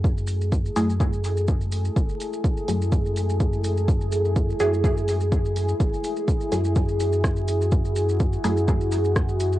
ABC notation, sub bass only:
X:1
M:4/4
L:1/8
Q:"Swing 16ths" 1/4=125
K:F#m
V:1 name="Sub bass" clef=bass
F,,3 F,,4- F,, | F,,, z2 F,,4- F,,- | F,,3 F,,4- F,, | F,,, z2 F,,4- F,,- |
F,,3 F,,4- F,, |]